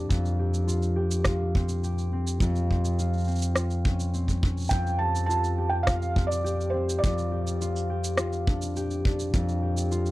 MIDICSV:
0, 0, Header, 1, 4, 480
1, 0, Start_track
1, 0, Tempo, 576923
1, 92, Time_signature, 4, 2, 24, 8
1, 8412, End_track
2, 0, Start_track
2, 0, Title_t, "Felt piano"
2, 0, Program_c, 0, 0
2, 3904, Note_on_c, 0, 79, 99
2, 4140, Note_off_c, 0, 79, 0
2, 4149, Note_on_c, 0, 81, 87
2, 4366, Note_off_c, 0, 81, 0
2, 4378, Note_on_c, 0, 81, 85
2, 4728, Note_off_c, 0, 81, 0
2, 4738, Note_on_c, 0, 79, 88
2, 4780, Note_off_c, 0, 79, 0
2, 4851, Note_on_c, 0, 77, 95
2, 5205, Note_off_c, 0, 77, 0
2, 5216, Note_on_c, 0, 74, 84
2, 5573, Note_on_c, 0, 72, 78
2, 5605, Note_off_c, 0, 74, 0
2, 5812, Note_on_c, 0, 74, 84
2, 5840, Note_off_c, 0, 72, 0
2, 7238, Note_off_c, 0, 74, 0
2, 8412, End_track
3, 0, Start_track
3, 0, Title_t, "Harp"
3, 0, Program_c, 1, 46
3, 0, Note_on_c, 1, 60, 61
3, 0, Note_on_c, 1, 62, 59
3, 0, Note_on_c, 1, 65, 63
3, 0, Note_on_c, 1, 67, 62
3, 76, Note_on_c, 1, 41, 74
3, 324, Note_off_c, 1, 67, 0
3, 327, Note_on_c, 1, 67, 49
3, 424, Note_off_c, 1, 60, 0
3, 556, Note_off_c, 1, 65, 0
3, 560, Note_on_c, 1, 65, 67
3, 796, Note_off_c, 1, 67, 0
3, 799, Note_on_c, 1, 67, 59
3, 1034, Note_off_c, 1, 65, 0
3, 1038, Note_on_c, 1, 65, 70
3, 1286, Note_on_c, 1, 60, 59
3, 1529, Note_off_c, 1, 67, 0
3, 1532, Note_on_c, 1, 67, 57
3, 1768, Note_off_c, 1, 60, 0
3, 1771, Note_on_c, 1, 60, 63
3, 1995, Note_off_c, 1, 41, 0
3, 2005, Note_on_c, 1, 41, 74
3, 2174, Note_off_c, 1, 62, 0
3, 2247, Note_off_c, 1, 60, 0
3, 2251, Note_on_c, 1, 60, 50
3, 2488, Note_off_c, 1, 65, 0
3, 2491, Note_on_c, 1, 65, 61
3, 2720, Note_off_c, 1, 60, 0
3, 2724, Note_on_c, 1, 60, 54
3, 2959, Note_off_c, 1, 65, 0
3, 2963, Note_on_c, 1, 65, 58
3, 3204, Note_on_c, 1, 61, 56
3, 3441, Note_off_c, 1, 60, 0
3, 3444, Note_on_c, 1, 60, 55
3, 3490, Note_off_c, 1, 67, 0
3, 3679, Note_off_c, 1, 61, 0
3, 3683, Note_on_c, 1, 61, 55
3, 3915, Note_off_c, 1, 41, 0
3, 3925, Note_on_c, 1, 41, 66
3, 4165, Note_on_c, 1, 67, 50
3, 4398, Note_off_c, 1, 65, 0
3, 4401, Note_on_c, 1, 65, 59
3, 4640, Note_off_c, 1, 67, 0
3, 4643, Note_on_c, 1, 67, 57
3, 4879, Note_off_c, 1, 65, 0
3, 4883, Note_on_c, 1, 65, 64
3, 5121, Note_off_c, 1, 60, 0
3, 5124, Note_on_c, 1, 60, 54
3, 5174, Note_off_c, 1, 61, 0
3, 5357, Note_off_c, 1, 67, 0
3, 5360, Note_on_c, 1, 67, 60
3, 5603, Note_off_c, 1, 60, 0
3, 5606, Note_on_c, 1, 60, 62
3, 5841, Note_off_c, 1, 41, 0
3, 5851, Note_on_c, 1, 41, 68
3, 6085, Note_off_c, 1, 67, 0
3, 6088, Note_on_c, 1, 67, 49
3, 6331, Note_off_c, 1, 65, 0
3, 6334, Note_on_c, 1, 65, 63
3, 6568, Note_off_c, 1, 67, 0
3, 6572, Note_on_c, 1, 67, 57
3, 6808, Note_off_c, 1, 65, 0
3, 6811, Note_on_c, 1, 65, 62
3, 7052, Note_on_c, 1, 62, 54
3, 7289, Note_off_c, 1, 67, 0
3, 7292, Note_on_c, 1, 67, 65
3, 7524, Note_off_c, 1, 62, 0
3, 7527, Note_on_c, 1, 62, 63
3, 7756, Note_off_c, 1, 41, 0
3, 7766, Note_on_c, 1, 41, 74
3, 8005, Note_off_c, 1, 67, 0
3, 8008, Note_on_c, 1, 67, 47
3, 8102, Note_off_c, 1, 60, 0
3, 8245, Note_off_c, 1, 65, 0
3, 8249, Note_on_c, 1, 65, 62
3, 8412, Note_off_c, 1, 41, 0
3, 8412, Note_off_c, 1, 62, 0
3, 8412, Note_off_c, 1, 65, 0
3, 8412, Note_off_c, 1, 67, 0
3, 8412, End_track
4, 0, Start_track
4, 0, Title_t, "Drums"
4, 87, Note_on_c, 9, 36, 96
4, 90, Note_on_c, 9, 82, 45
4, 171, Note_off_c, 9, 36, 0
4, 173, Note_off_c, 9, 82, 0
4, 212, Note_on_c, 9, 82, 26
4, 295, Note_off_c, 9, 82, 0
4, 448, Note_on_c, 9, 82, 50
4, 531, Note_off_c, 9, 82, 0
4, 569, Note_on_c, 9, 82, 47
4, 652, Note_off_c, 9, 82, 0
4, 686, Note_on_c, 9, 82, 28
4, 769, Note_off_c, 9, 82, 0
4, 922, Note_on_c, 9, 82, 55
4, 1005, Note_off_c, 9, 82, 0
4, 1036, Note_on_c, 9, 37, 68
4, 1040, Note_on_c, 9, 82, 44
4, 1043, Note_on_c, 9, 36, 86
4, 1119, Note_off_c, 9, 37, 0
4, 1124, Note_off_c, 9, 82, 0
4, 1126, Note_off_c, 9, 36, 0
4, 1290, Note_on_c, 9, 36, 96
4, 1373, Note_off_c, 9, 36, 0
4, 1403, Note_on_c, 9, 82, 56
4, 1486, Note_off_c, 9, 82, 0
4, 1529, Note_on_c, 9, 82, 47
4, 1612, Note_off_c, 9, 82, 0
4, 1650, Note_on_c, 9, 82, 30
4, 1733, Note_off_c, 9, 82, 0
4, 1888, Note_on_c, 9, 82, 60
4, 1971, Note_off_c, 9, 82, 0
4, 2000, Note_on_c, 9, 36, 93
4, 2008, Note_on_c, 9, 82, 50
4, 2083, Note_off_c, 9, 36, 0
4, 2091, Note_off_c, 9, 82, 0
4, 2127, Note_on_c, 9, 82, 27
4, 2210, Note_off_c, 9, 82, 0
4, 2252, Note_on_c, 9, 36, 48
4, 2335, Note_off_c, 9, 36, 0
4, 2368, Note_on_c, 9, 82, 53
4, 2451, Note_off_c, 9, 82, 0
4, 2489, Note_on_c, 9, 82, 48
4, 2572, Note_off_c, 9, 82, 0
4, 2609, Note_on_c, 9, 82, 14
4, 2643, Note_off_c, 9, 82, 0
4, 2643, Note_on_c, 9, 82, 15
4, 2665, Note_off_c, 9, 82, 0
4, 2665, Note_on_c, 9, 82, 16
4, 2699, Note_off_c, 9, 82, 0
4, 2699, Note_on_c, 9, 82, 19
4, 2729, Note_off_c, 9, 82, 0
4, 2729, Note_on_c, 9, 82, 20
4, 2757, Note_off_c, 9, 82, 0
4, 2757, Note_on_c, 9, 82, 20
4, 2790, Note_off_c, 9, 82, 0
4, 2790, Note_on_c, 9, 82, 23
4, 2814, Note_off_c, 9, 82, 0
4, 2814, Note_on_c, 9, 82, 26
4, 2844, Note_off_c, 9, 82, 0
4, 2844, Note_on_c, 9, 82, 50
4, 2927, Note_off_c, 9, 82, 0
4, 2958, Note_on_c, 9, 37, 70
4, 2963, Note_on_c, 9, 82, 48
4, 3041, Note_off_c, 9, 37, 0
4, 3046, Note_off_c, 9, 82, 0
4, 3083, Note_on_c, 9, 82, 32
4, 3166, Note_off_c, 9, 82, 0
4, 3204, Note_on_c, 9, 36, 93
4, 3287, Note_off_c, 9, 36, 0
4, 3326, Note_on_c, 9, 82, 58
4, 3410, Note_off_c, 9, 82, 0
4, 3446, Note_on_c, 9, 82, 47
4, 3529, Note_off_c, 9, 82, 0
4, 3562, Note_on_c, 9, 36, 48
4, 3568, Note_on_c, 9, 82, 31
4, 3645, Note_off_c, 9, 36, 0
4, 3651, Note_off_c, 9, 82, 0
4, 3686, Note_on_c, 9, 36, 96
4, 3769, Note_off_c, 9, 36, 0
4, 3807, Note_on_c, 9, 82, 27
4, 3825, Note_off_c, 9, 82, 0
4, 3825, Note_on_c, 9, 82, 31
4, 3843, Note_off_c, 9, 82, 0
4, 3843, Note_on_c, 9, 82, 35
4, 3861, Note_off_c, 9, 82, 0
4, 3861, Note_on_c, 9, 82, 39
4, 3888, Note_off_c, 9, 82, 0
4, 3888, Note_on_c, 9, 82, 44
4, 3904, Note_off_c, 9, 82, 0
4, 3904, Note_on_c, 9, 82, 53
4, 3919, Note_on_c, 9, 36, 110
4, 3925, Note_off_c, 9, 82, 0
4, 3925, Note_on_c, 9, 82, 47
4, 4002, Note_off_c, 9, 36, 0
4, 4008, Note_off_c, 9, 82, 0
4, 4051, Note_on_c, 9, 82, 26
4, 4134, Note_off_c, 9, 82, 0
4, 4287, Note_on_c, 9, 82, 53
4, 4370, Note_off_c, 9, 82, 0
4, 4411, Note_on_c, 9, 82, 51
4, 4494, Note_off_c, 9, 82, 0
4, 4526, Note_on_c, 9, 82, 31
4, 4610, Note_off_c, 9, 82, 0
4, 4884, Note_on_c, 9, 37, 74
4, 4887, Note_on_c, 9, 36, 94
4, 4889, Note_on_c, 9, 82, 52
4, 4967, Note_off_c, 9, 37, 0
4, 4970, Note_off_c, 9, 36, 0
4, 4972, Note_off_c, 9, 82, 0
4, 5011, Note_on_c, 9, 82, 30
4, 5095, Note_off_c, 9, 82, 0
4, 5127, Note_on_c, 9, 36, 94
4, 5210, Note_off_c, 9, 36, 0
4, 5255, Note_on_c, 9, 82, 64
4, 5338, Note_off_c, 9, 82, 0
4, 5377, Note_on_c, 9, 82, 50
4, 5460, Note_off_c, 9, 82, 0
4, 5496, Note_on_c, 9, 82, 31
4, 5580, Note_off_c, 9, 82, 0
4, 5735, Note_on_c, 9, 82, 57
4, 5818, Note_off_c, 9, 82, 0
4, 5855, Note_on_c, 9, 36, 104
4, 5858, Note_on_c, 9, 82, 52
4, 5938, Note_off_c, 9, 36, 0
4, 5941, Note_off_c, 9, 82, 0
4, 5975, Note_on_c, 9, 82, 28
4, 6059, Note_off_c, 9, 82, 0
4, 6215, Note_on_c, 9, 82, 58
4, 6298, Note_off_c, 9, 82, 0
4, 6335, Note_on_c, 9, 82, 50
4, 6418, Note_off_c, 9, 82, 0
4, 6456, Note_on_c, 9, 82, 33
4, 6539, Note_off_c, 9, 82, 0
4, 6688, Note_on_c, 9, 82, 59
4, 6771, Note_off_c, 9, 82, 0
4, 6801, Note_on_c, 9, 37, 77
4, 6806, Note_on_c, 9, 82, 52
4, 6884, Note_off_c, 9, 37, 0
4, 6889, Note_off_c, 9, 82, 0
4, 6927, Note_on_c, 9, 82, 31
4, 7010, Note_off_c, 9, 82, 0
4, 7050, Note_on_c, 9, 36, 108
4, 7133, Note_off_c, 9, 36, 0
4, 7169, Note_on_c, 9, 82, 67
4, 7252, Note_off_c, 9, 82, 0
4, 7291, Note_on_c, 9, 82, 51
4, 7375, Note_off_c, 9, 82, 0
4, 7411, Note_on_c, 9, 82, 34
4, 7494, Note_off_c, 9, 82, 0
4, 7532, Note_on_c, 9, 36, 95
4, 7615, Note_off_c, 9, 36, 0
4, 7650, Note_on_c, 9, 82, 65
4, 7733, Note_off_c, 9, 82, 0
4, 7769, Note_on_c, 9, 36, 115
4, 7772, Note_on_c, 9, 82, 52
4, 7852, Note_off_c, 9, 36, 0
4, 7855, Note_off_c, 9, 82, 0
4, 7894, Note_on_c, 9, 82, 30
4, 7977, Note_off_c, 9, 82, 0
4, 8128, Note_on_c, 9, 82, 62
4, 8211, Note_off_c, 9, 82, 0
4, 8250, Note_on_c, 9, 82, 51
4, 8333, Note_off_c, 9, 82, 0
4, 8368, Note_on_c, 9, 82, 32
4, 8412, Note_off_c, 9, 82, 0
4, 8412, End_track
0, 0, End_of_file